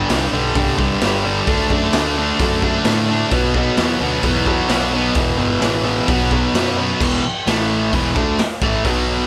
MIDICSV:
0, 0, Header, 1, 6, 480
1, 0, Start_track
1, 0, Key_signature, 1, "minor"
1, 0, Tempo, 460829
1, 1539, Time_signature, 4, 2, 24, 8
1, 9653, End_track
2, 0, Start_track
2, 0, Title_t, "Distorted electric guitar"
2, 0, Program_c, 0, 30
2, 0, Note_on_c, 0, 59, 101
2, 102, Note_on_c, 0, 43, 104
2, 108, Note_on_c, 0, 50, 99
2, 111, Note_on_c, 0, 55, 103
2, 332, Note_off_c, 0, 43, 0
2, 334, Note_off_c, 0, 50, 0
2, 342, Note_off_c, 0, 55, 0
2, 345, Note_on_c, 0, 43, 83
2, 346, Note_on_c, 0, 50, 105
2, 354, Note_on_c, 0, 55, 102
2, 567, Note_off_c, 0, 43, 0
2, 571, Note_off_c, 0, 50, 0
2, 579, Note_off_c, 0, 55, 0
2, 579, Note_on_c, 0, 43, 118
2, 583, Note_on_c, 0, 50, 120
2, 592, Note_on_c, 0, 55, 121
2, 796, Note_off_c, 0, 43, 0
2, 803, Note_off_c, 0, 50, 0
2, 809, Note_on_c, 0, 43, 96
2, 813, Note_off_c, 0, 55, 0
2, 816, Note_on_c, 0, 50, 91
2, 825, Note_on_c, 0, 55, 83
2, 1053, Note_off_c, 0, 43, 0
2, 1059, Note_off_c, 0, 50, 0
2, 1061, Note_off_c, 0, 55, 0
2, 1065, Note_on_c, 0, 43, 83
2, 1072, Note_on_c, 0, 50, 99
2, 1073, Note_on_c, 0, 55, 106
2, 1132, Note_off_c, 0, 59, 0
2, 1284, Note_off_c, 0, 43, 0
2, 1291, Note_off_c, 0, 55, 0
2, 1293, Note_off_c, 0, 50, 0
2, 1296, Note_on_c, 0, 43, 95
2, 1304, Note_on_c, 0, 55, 96
2, 1305, Note_on_c, 0, 50, 86
2, 1523, Note_off_c, 0, 43, 0
2, 1527, Note_off_c, 0, 55, 0
2, 1528, Note_off_c, 0, 50, 0
2, 1544, Note_on_c, 0, 50, 105
2, 1552, Note_on_c, 0, 57, 101
2, 1554, Note_on_c, 0, 62, 96
2, 1770, Note_off_c, 0, 50, 0
2, 1776, Note_off_c, 0, 57, 0
2, 1783, Note_on_c, 0, 50, 91
2, 1788, Note_on_c, 0, 57, 86
2, 1796, Note_off_c, 0, 62, 0
2, 1801, Note_on_c, 0, 62, 97
2, 2015, Note_off_c, 0, 50, 0
2, 2019, Note_off_c, 0, 57, 0
2, 2027, Note_on_c, 0, 50, 83
2, 2031, Note_off_c, 0, 62, 0
2, 2032, Note_on_c, 0, 57, 98
2, 2035, Note_on_c, 0, 62, 104
2, 2254, Note_off_c, 0, 50, 0
2, 2259, Note_off_c, 0, 57, 0
2, 2267, Note_on_c, 0, 50, 91
2, 2271, Note_on_c, 0, 57, 106
2, 2274, Note_off_c, 0, 62, 0
2, 2278, Note_on_c, 0, 62, 109
2, 2491, Note_off_c, 0, 50, 0
2, 2494, Note_off_c, 0, 57, 0
2, 2500, Note_off_c, 0, 62, 0
2, 2504, Note_on_c, 0, 50, 106
2, 2506, Note_on_c, 0, 57, 120
2, 2512, Note_on_c, 0, 62, 125
2, 2720, Note_off_c, 0, 50, 0
2, 2732, Note_off_c, 0, 57, 0
2, 2732, Note_on_c, 0, 50, 88
2, 2736, Note_off_c, 0, 62, 0
2, 2745, Note_on_c, 0, 57, 90
2, 2748, Note_on_c, 0, 62, 86
2, 2965, Note_off_c, 0, 50, 0
2, 2974, Note_off_c, 0, 57, 0
2, 2978, Note_on_c, 0, 50, 90
2, 2980, Note_off_c, 0, 62, 0
2, 2986, Note_on_c, 0, 57, 102
2, 2993, Note_on_c, 0, 62, 104
2, 3209, Note_off_c, 0, 50, 0
2, 3221, Note_on_c, 0, 50, 102
2, 3224, Note_off_c, 0, 57, 0
2, 3228, Note_off_c, 0, 62, 0
2, 3237, Note_on_c, 0, 57, 91
2, 3240, Note_on_c, 0, 62, 107
2, 3444, Note_off_c, 0, 50, 0
2, 3448, Note_on_c, 0, 47, 97
2, 3452, Note_off_c, 0, 57, 0
2, 3454, Note_off_c, 0, 62, 0
2, 3456, Note_on_c, 0, 54, 91
2, 3463, Note_on_c, 0, 59, 118
2, 3684, Note_off_c, 0, 47, 0
2, 3687, Note_off_c, 0, 54, 0
2, 3696, Note_on_c, 0, 47, 84
2, 3699, Note_on_c, 0, 54, 87
2, 3709, Note_off_c, 0, 59, 0
2, 3714, Note_on_c, 0, 59, 84
2, 3921, Note_off_c, 0, 47, 0
2, 3929, Note_off_c, 0, 54, 0
2, 3933, Note_on_c, 0, 47, 98
2, 3937, Note_off_c, 0, 59, 0
2, 3942, Note_on_c, 0, 54, 94
2, 3942, Note_on_c, 0, 59, 106
2, 4157, Note_off_c, 0, 47, 0
2, 4163, Note_off_c, 0, 54, 0
2, 4170, Note_on_c, 0, 47, 93
2, 4176, Note_off_c, 0, 59, 0
2, 4176, Note_on_c, 0, 54, 109
2, 4180, Note_on_c, 0, 59, 108
2, 4395, Note_off_c, 0, 47, 0
2, 4407, Note_on_c, 0, 47, 112
2, 4409, Note_off_c, 0, 54, 0
2, 4419, Note_off_c, 0, 59, 0
2, 4422, Note_on_c, 0, 54, 126
2, 4423, Note_on_c, 0, 59, 121
2, 4629, Note_off_c, 0, 47, 0
2, 4638, Note_off_c, 0, 54, 0
2, 4641, Note_on_c, 0, 47, 86
2, 4650, Note_on_c, 0, 54, 102
2, 4657, Note_off_c, 0, 59, 0
2, 4661, Note_on_c, 0, 59, 86
2, 4874, Note_off_c, 0, 54, 0
2, 4876, Note_off_c, 0, 47, 0
2, 4884, Note_off_c, 0, 59, 0
2, 4887, Note_on_c, 0, 54, 96
2, 4889, Note_on_c, 0, 47, 99
2, 4896, Note_on_c, 0, 59, 100
2, 5118, Note_off_c, 0, 47, 0
2, 5128, Note_off_c, 0, 54, 0
2, 5130, Note_on_c, 0, 47, 92
2, 5136, Note_off_c, 0, 59, 0
2, 5140, Note_on_c, 0, 54, 94
2, 5148, Note_on_c, 0, 59, 102
2, 5357, Note_on_c, 0, 40, 102
2, 5359, Note_off_c, 0, 47, 0
2, 5364, Note_off_c, 0, 54, 0
2, 5368, Note_off_c, 0, 59, 0
2, 5370, Note_on_c, 0, 47, 94
2, 5373, Note_on_c, 0, 52, 115
2, 5587, Note_off_c, 0, 40, 0
2, 5599, Note_off_c, 0, 47, 0
2, 5599, Note_on_c, 0, 40, 81
2, 5608, Note_off_c, 0, 52, 0
2, 5612, Note_on_c, 0, 47, 83
2, 5620, Note_on_c, 0, 52, 94
2, 5829, Note_off_c, 0, 40, 0
2, 5832, Note_off_c, 0, 47, 0
2, 5835, Note_off_c, 0, 52, 0
2, 5842, Note_on_c, 0, 40, 98
2, 5845, Note_on_c, 0, 47, 94
2, 5847, Note_on_c, 0, 52, 101
2, 6073, Note_off_c, 0, 40, 0
2, 6080, Note_off_c, 0, 47, 0
2, 6083, Note_off_c, 0, 52, 0
2, 6086, Note_on_c, 0, 40, 85
2, 6093, Note_on_c, 0, 47, 97
2, 6096, Note_on_c, 0, 52, 102
2, 6313, Note_off_c, 0, 47, 0
2, 6317, Note_off_c, 0, 40, 0
2, 6322, Note_off_c, 0, 52, 0
2, 6325, Note_on_c, 0, 47, 112
2, 6333, Note_on_c, 0, 54, 112
2, 6333, Note_on_c, 0, 59, 126
2, 6561, Note_off_c, 0, 47, 0
2, 6566, Note_off_c, 0, 54, 0
2, 6574, Note_on_c, 0, 47, 80
2, 6579, Note_off_c, 0, 59, 0
2, 6579, Note_on_c, 0, 54, 87
2, 6591, Note_on_c, 0, 59, 102
2, 6809, Note_off_c, 0, 47, 0
2, 6815, Note_off_c, 0, 54, 0
2, 6821, Note_on_c, 0, 47, 86
2, 6822, Note_off_c, 0, 59, 0
2, 6828, Note_on_c, 0, 54, 89
2, 6835, Note_on_c, 0, 59, 101
2, 7035, Note_off_c, 0, 47, 0
2, 7040, Note_off_c, 0, 54, 0
2, 7047, Note_on_c, 0, 47, 93
2, 7052, Note_off_c, 0, 59, 0
2, 7052, Note_on_c, 0, 54, 97
2, 7065, Note_on_c, 0, 59, 112
2, 7278, Note_off_c, 0, 47, 0
2, 7281, Note_off_c, 0, 54, 0
2, 7287, Note_off_c, 0, 59, 0
2, 7303, Note_on_c, 0, 40, 94
2, 7307, Note_on_c, 0, 47, 103
2, 7312, Note_on_c, 0, 52, 98
2, 7523, Note_off_c, 0, 40, 0
2, 7536, Note_off_c, 0, 47, 0
2, 7538, Note_off_c, 0, 52, 0
2, 7775, Note_on_c, 0, 45, 97
2, 7781, Note_on_c, 0, 52, 104
2, 7789, Note_on_c, 0, 57, 105
2, 8250, Note_off_c, 0, 45, 0
2, 8253, Note_off_c, 0, 52, 0
2, 8254, Note_on_c, 0, 40, 102
2, 8257, Note_off_c, 0, 57, 0
2, 8265, Note_on_c, 0, 47, 115
2, 8267, Note_on_c, 0, 52, 122
2, 8490, Note_off_c, 0, 40, 0
2, 8491, Note_off_c, 0, 47, 0
2, 8494, Note_off_c, 0, 52, 0
2, 8495, Note_on_c, 0, 50, 99
2, 8498, Note_on_c, 0, 57, 94
2, 8507, Note_on_c, 0, 62, 101
2, 8731, Note_off_c, 0, 50, 0
2, 8732, Note_off_c, 0, 57, 0
2, 8736, Note_off_c, 0, 62, 0
2, 8973, Note_on_c, 0, 45, 113
2, 8988, Note_on_c, 0, 52, 104
2, 8990, Note_on_c, 0, 57, 98
2, 9217, Note_off_c, 0, 45, 0
2, 9217, Note_on_c, 0, 47, 95
2, 9228, Note_off_c, 0, 52, 0
2, 9228, Note_on_c, 0, 54, 101
2, 9230, Note_off_c, 0, 57, 0
2, 9230, Note_on_c, 0, 59, 97
2, 9653, Note_off_c, 0, 47, 0
2, 9653, Note_off_c, 0, 54, 0
2, 9653, Note_off_c, 0, 59, 0
2, 9653, End_track
3, 0, Start_track
3, 0, Title_t, "Fingered electric bass"
3, 0, Program_c, 1, 33
3, 103, Note_on_c, 1, 36, 83
3, 301, Note_off_c, 1, 36, 0
3, 338, Note_on_c, 1, 35, 96
3, 538, Note_off_c, 1, 35, 0
3, 578, Note_on_c, 1, 36, 101
3, 975, Note_off_c, 1, 36, 0
3, 1061, Note_on_c, 1, 31, 96
3, 1457, Note_off_c, 1, 31, 0
3, 1533, Note_on_c, 1, 38, 96
3, 1734, Note_off_c, 1, 38, 0
3, 1771, Note_on_c, 1, 42, 96
3, 1972, Note_off_c, 1, 42, 0
3, 2007, Note_on_c, 1, 38, 102
3, 2408, Note_off_c, 1, 38, 0
3, 2493, Note_on_c, 1, 42, 98
3, 2891, Note_off_c, 1, 42, 0
3, 2964, Note_on_c, 1, 45, 96
3, 3366, Note_off_c, 1, 45, 0
3, 3451, Note_on_c, 1, 35, 106
3, 3850, Note_off_c, 1, 35, 0
3, 3937, Note_on_c, 1, 40, 98
3, 4135, Note_off_c, 1, 40, 0
3, 4174, Note_on_c, 1, 38, 101
3, 4373, Note_off_c, 1, 38, 0
3, 4402, Note_on_c, 1, 40, 99
3, 4805, Note_off_c, 1, 40, 0
3, 4892, Note_on_c, 1, 35, 94
3, 5291, Note_off_c, 1, 35, 0
3, 5369, Note_on_c, 1, 28, 102
3, 5571, Note_off_c, 1, 28, 0
3, 5599, Note_on_c, 1, 31, 100
3, 5805, Note_off_c, 1, 31, 0
3, 5848, Note_on_c, 1, 33, 90
3, 6249, Note_off_c, 1, 33, 0
3, 6333, Note_on_c, 1, 35, 96
3, 6732, Note_off_c, 1, 35, 0
3, 6811, Note_on_c, 1, 42, 85
3, 7211, Note_off_c, 1, 42, 0
3, 7295, Note_on_c, 1, 28, 96
3, 7520, Note_off_c, 1, 28, 0
3, 7779, Note_on_c, 1, 33, 94
3, 8226, Note_off_c, 1, 33, 0
3, 8258, Note_on_c, 1, 28, 99
3, 8482, Note_off_c, 1, 28, 0
3, 8493, Note_on_c, 1, 38, 98
3, 8720, Note_off_c, 1, 38, 0
3, 8973, Note_on_c, 1, 33, 100
3, 9200, Note_off_c, 1, 33, 0
3, 9216, Note_on_c, 1, 35, 96
3, 9653, Note_off_c, 1, 35, 0
3, 9653, End_track
4, 0, Start_track
4, 0, Title_t, "Muted distorted electric guitar strokes"
4, 7535, Note_on_c, 9, 29, 58
4, 7639, Note_off_c, 9, 29, 0
4, 8752, Note_on_c, 9, 29, 55
4, 8856, Note_off_c, 9, 29, 0
4, 9653, End_track
5, 0, Start_track
5, 0, Title_t, "Muted fingered electric bass strokes"
5, 7545, Note_on_c, 9, 29, 45
5, 7649, Note_off_c, 9, 29, 0
5, 8732, Note_on_c, 9, 29, 41
5, 8836, Note_off_c, 9, 29, 0
5, 9653, End_track
6, 0, Start_track
6, 0, Title_t, "Drums"
6, 97, Note_on_c, 9, 46, 67
6, 105, Note_on_c, 9, 38, 113
6, 201, Note_off_c, 9, 46, 0
6, 209, Note_off_c, 9, 38, 0
6, 577, Note_on_c, 9, 36, 112
6, 577, Note_on_c, 9, 46, 74
6, 681, Note_off_c, 9, 46, 0
6, 682, Note_off_c, 9, 36, 0
6, 818, Note_on_c, 9, 36, 81
6, 923, Note_off_c, 9, 36, 0
6, 1051, Note_on_c, 9, 46, 69
6, 1060, Note_on_c, 9, 38, 117
6, 1156, Note_off_c, 9, 46, 0
6, 1164, Note_off_c, 9, 38, 0
6, 1531, Note_on_c, 9, 46, 76
6, 1534, Note_on_c, 9, 36, 121
6, 1636, Note_off_c, 9, 46, 0
6, 1638, Note_off_c, 9, 36, 0
6, 1774, Note_on_c, 9, 36, 85
6, 1878, Note_off_c, 9, 36, 0
6, 2005, Note_on_c, 9, 46, 70
6, 2013, Note_on_c, 9, 38, 122
6, 2109, Note_off_c, 9, 46, 0
6, 2117, Note_off_c, 9, 38, 0
6, 2493, Note_on_c, 9, 46, 67
6, 2495, Note_on_c, 9, 36, 116
6, 2598, Note_off_c, 9, 46, 0
6, 2599, Note_off_c, 9, 36, 0
6, 2733, Note_on_c, 9, 36, 83
6, 2837, Note_off_c, 9, 36, 0
6, 2961, Note_on_c, 9, 46, 67
6, 2969, Note_on_c, 9, 38, 127
6, 3065, Note_off_c, 9, 46, 0
6, 3073, Note_off_c, 9, 38, 0
6, 3444, Note_on_c, 9, 46, 59
6, 3453, Note_on_c, 9, 36, 109
6, 3548, Note_off_c, 9, 46, 0
6, 3557, Note_off_c, 9, 36, 0
6, 3692, Note_on_c, 9, 36, 83
6, 3796, Note_off_c, 9, 36, 0
6, 3925, Note_on_c, 9, 46, 71
6, 3934, Note_on_c, 9, 38, 127
6, 4030, Note_off_c, 9, 46, 0
6, 4038, Note_off_c, 9, 38, 0
6, 4400, Note_on_c, 9, 46, 62
6, 4409, Note_on_c, 9, 36, 109
6, 4504, Note_off_c, 9, 46, 0
6, 4513, Note_off_c, 9, 36, 0
6, 4648, Note_on_c, 9, 36, 86
6, 4753, Note_off_c, 9, 36, 0
6, 4883, Note_on_c, 9, 46, 68
6, 4892, Note_on_c, 9, 38, 124
6, 4987, Note_off_c, 9, 46, 0
6, 4996, Note_off_c, 9, 38, 0
6, 5359, Note_on_c, 9, 46, 64
6, 5368, Note_on_c, 9, 36, 121
6, 5463, Note_off_c, 9, 46, 0
6, 5472, Note_off_c, 9, 36, 0
6, 5847, Note_on_c, 9, 46, 74
6, 5855, Note_on_c, 9, 38, 111
6, 5951, Note_off_c, 9, 46, 0
6, 5959, Note_off_c, 9, 38, 0
6, 6335, Note_on_c, 9, 36, 121
6, 6338, Note_on_c, 9, 46, 70
6, 6439, Note_off_c, 9, 36, 0
6, 6442, Note_off_c, 9, 46, 0
6, 6574, Note_on_c, 9, 36, 86
6, 6678, Note_off_c, 9, 36, 0
6, 6816, Note_on_c, 9, 46, 63
6, 6825, Note_on_c, 9, 38, 120
6, 6920, Note_off_c, 9, 46, 0
6, 6929, Note_off_c, 9, 38, 0
6, 7297, Note_on_c, 9, 36, 111
6, 7303, Note_on_c, 9, 49, 119
6, 7401, Note_off_c, 9, 36, 0
6, 7408, Note_off_c, 9, 49, 0
6, 7781, Note_on_c, 9, 46, 64
6, 7789, Note_on_c, 9, 38, 114
6, 7885, Note_off_c, 9, 46, 0
6, 7893, Note_off_c, 9, 38, 0
6, 8259, Note_on_c, 9, 36, 98
6, 8263, Note_on_c, 9, 46, 60
6, 8364, Note_off_c, 9, 36, 0
6, 8367, Note_off_c, 9, 46, 0
6, 8498, Note_on_c, 9, 36, 108
6, 8602, Note_off_c, 9, 36, 0
6, 8734, Note_on_c, 9, 46, 66
6, 8743, Note_on_c, 9, 38, 121
6, 8839, Note_off_c, 9, 46, 0
6, 8847, Note_off_c, 9, 38, 0
6, 8975, Note_on_c, 9, 36, 115
6, 9079, Note_off_c, 9, 36, 0
6, 9215, Note_on_c, 9, 36, 101
6, 9215, Note_on_c, 9, 46, 67
6, 9319, Note_off_c, 9, 46, 0
6, 9320, Note_off_c, 9, 36, 0
6, 9653, End_track
0, 0, End_of_file